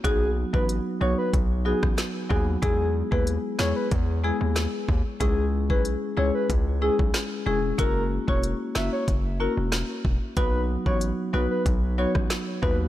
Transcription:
<<
  \new Staff \with { instrumentName = "Soft synth lead" } { \time 4/4 \key b \mixolydian \tempo 4 = 93 gis'8 r16 b'16 r8 cis''16 b'16 r8 gis'16 r8. gis'16 r16 | gis'8 r16 b'16 r8 cis''16 b'16 r8 gis'16 r4 r16 | gis'8 r16 b'16 r8 cis''16 b'16 r8 gis'16 r8. gis'16 r16 | ais'8 r16 cis''16 r8 e''16 cis''16 r8 ais'16 r4 r16 |
b'8 r16 cis''16 r8 b'16 b'16 r8 cis''16 r8. b'16 r16 | }
  \new Staff \with { instrumentName = "Marimba" } { \time 4/4 \key b \mixolydian <fis b dis' fis'>8. <fis b dis' fis'>8. <fis b dis' fis'>8 r8 <fis b dis' fis'>16 r8. <fis b dis' fis'>16 r16 | <gis b e' gis'>8. <gis b e' gis'>8. <gis b e' gis'>8 r8 <gis b e' gis'>16 r4 r16 | <gis cis' e' gis'>8. <gis cis' e' gis'>8. <gis cis' e' gis'>8 r8 <gis cis' e' gis'>16 r8. <gis cis' e' gis'>16 r16 | <ais cis' e' fis'>8. <ais cis' e' fis'>8. <ais cis' e' fis'>8 r8 <ais cis' e' fis'>16 r4 r16 |
<fis b dis' fis'>8. <fis b dis' fis'>8. <fis b dis' fis'>8 r8 <fis b dis' fis'>16 r8. <fis b dis' fis'>16 r16 | }
  \new Staff \with { instrumentName = "808-style bass" } { \clef bass \time 4/4 \key b \mixolydian b,,8. a,,8 r16 b,,16 r16 b,,8. a,,16 r8 dis,8 | e,8. dis,8 r16 e,16 r16 e,8. dis,8 r16 dis,16 r16 | cis,8. b,,8 r16 cis,16 r16 cis,8. b,,16 r8 e,,8 | fis,,8. e,,8 r16 fis,,16 r16 fis,,8. e,,8 r16 e,,16 r16 |
b,,8. a,,8 r16 b,,16 r16 b,,8. a,,16 r8 dis,8 | }
  \new DrumStaff \with { instrumentName = "Drums" } \drummode { \time 4/4 <hh bd>8. bd16 hh4 <hh bd>8. <bd ss>16 <hh ss sn>8 bd8 | <hh bd>8. bd16 hh8 <ss sn>8 <hh bd>4 <hh ss sn>8 bd8 | <hh bd>8. bd16 hh4 <hh bd>8. bd16 <hh ss sn>4 | <hh bd>8. bd16 hh8 <ss sn>8 <hh bd>4 <hh ss sn>8 bd8 |
<hh bd>8. bd16 hh4 <hh bd>8. <bd ss>16 <hh ss sn>8 bd8 | }
>>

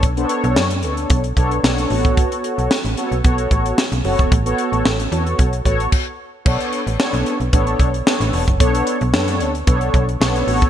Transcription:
<<
  \new Staff \with { instrumentName = "Analog polysynth" } { \time 4/4 \key b \minor \tempo 4 = 112 r16 <b d' a' c'' cis''>8. r8 <b d' a' cis''>8. r16 <b d' a' cis''>16 r16 <b d' a' cis''>8 <b fis' a' cis''>8~ | <b fis' a' cis''>4 r8 <b fis' a' cis''>16 r16 <b fis' a' cis''>4 r8 <b fis' a' cis''>8 | r16 <b fis' a' cis''>8. r8 <b fis' a' cis''>8. r16 <b fis' a' cis''>16 r4 r16 | <b d' a' cis''>8. r16 <b d' a' cis''>8. r16 <b d' a' cis''>8. r16 <b d' a' cis''>8. r16 |
<b d' a' cis''>8. r16 <b d' a' cis''>8. r16 <b d' a' cis''>8. r16 <b d' a' cis''>8 <b fis' a' cis''>8 | }
  \new Staff \with { instrumentName = "FM bass" } { \clef bass \time 4/4 \key b \minor b,,8 r16 b,,16 fis,8 d,8 b,,8 b,,8 b,,8 a,,8~ | a,,16 r8 b,,16 r16 a,,16 r16 b,,16 b,,8 a,,8 r16 b,,16 fis,,16 e,,16 | a,,8 r16 a,,16 a,,8 e,8 b,,8 a,,8 r4 | b,,16 r8 a,,16 r16 b,,16 r16 b,,16 a,,8 b,,8 r16 a,,16 e,,16 fis,,16 |
b,,8 r16 b,,16 fis,8 d,8 b,,8 b,,8 b,,8 a,,8 | }
  \new DrumStaff \with { instrumentName = "Drums" } \drummode { \time 4/4 <hh bd>16 hh16 hh16 hh16 sn16 hh16 hh16 hh16 <hh bd>16 hh16 <hh bd>16 hh16 sn16 hh16 hho16 <hh bd>16 | <hh bd>16 hh16 hh16 hh16 sn16 hh16 hh16 hh16 <hh bd>16 hh16 <hh bd>16 hh16 sn16 hh16 hho16 <hh bd>16 | <hh bd>16 hh16 hh16 hh16 sn16 hh16 hh16 hh16 <hh bd>16 hh16 <hh bd>16 hh16 <cymc bd>4 | <cymc bd>16 hh16 hh16 hh16 sn16 hh16 hh16 hh16 <hh bd>16 hh16 <hh bd>16 hh16 sn16 hh16 hho16 <hh bd>16 |
<hh bd>16 hh16 hh16 hh16 sn16 hh16 hh16 hh16 <hh bd>16 hh16 <hh bd>16 hh16 sn16 hh16 hho16 <hh bd>16 | }
>>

